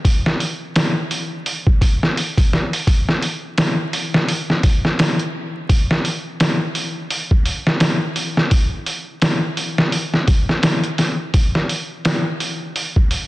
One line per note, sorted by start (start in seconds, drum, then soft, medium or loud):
0.05 kick medium
0.05 open hi-hat medium
0.26 snare soft
0.40 open hi-hat medium
0.76 snare loud
0.76 open hi-hat medium
1.11 open hi-hat medium
1.46 open hi-hat medium
1.67 kick medium
1.81 kick medium
1.81 open hi-hat medium
2.03 snare soft
2.17 open hi-hat medium
2.37 kick medium
2.37 open hi-hat medium
2.53 snare soft
2.73 open hi-hat medium
2.87 kick medium
2.87 open hi-hat medium
3.09 snare soft
3.22 open hi-hat medium
3.58 snare loud
3.58 open hi-hat medium
3.93 open hi-hat medium
4.14 snare soft
4.28 open hi-hat medium
4.50 snare soft
4.63 kick medium
4.63 open hi-hat medium
4.85 snare soft
4.99 snare loud
4.99 open hi-hat medium
5.19 closed hi-hat soft
5.69 kick loud
5.69 open hi-hat medium
5.91 snare soft
6.05 open hi-hat medium
6.40 snare loud
6.40 open hi-hat medium
6.75 open hi-hat medium
7.11 open hi-hat medium
7.31 kick medium
7.46 open hi-hat medium
7.67 snare soft
7.80 snare loud
7.80 open hi-hat medium
8.16 open hi-hat medium
8.37 snare soft
8.51 kick medium
8.51 open hi-hat medium
8.86 open hi-hat medium
9.22 snare loud
9.22 open hi-hat medium
9.57 open hi-hat medium
9.78 snare soft
9.92 open hi-hat medium
10.14 snare soft
10.28 kick medium
10.28 open hi-hat medium
10.49 snare soft
10.63 snare loud
10.63 open hi-hat medium
10.84 closed hi-hat soft
10.98 snare soft
10.98 open hi-hat medium
11.34 kick loud
11.34 open hi-hat medium
11.55 snare soft
11.69 open hi-hat medium
12.05 snare loud
12.05 open hi-hat medium
12.40 open hi-hat medium
12.76 open hi-hat medium
12.96 kick medium
13.11 open hi-hat medium